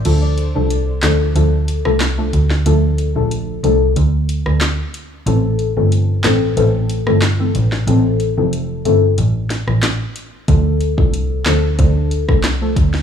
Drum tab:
CC |x---------------|----------------|----------------|----------------|
HH |x-x-x-x-x-x-x-x-|x-x-x-x-x-x-x-x-|x-x-x-x-x-x-x-x-|x-x-x-x-x-x-x-x-|
CP |------x-----x---|------------x---|------x-----x---|------------x---|
SD |------o----ro--o|-----------ro---|------o----ro--o|----------oro---|
BD |----------------|----------------|----------------|----------------|

CC |----------------|
HH |x-x-x-x-x-x-x-x-|
CP |------x-----x---|
SD |------o----ro--o|
BD |o--o----o--o--o-|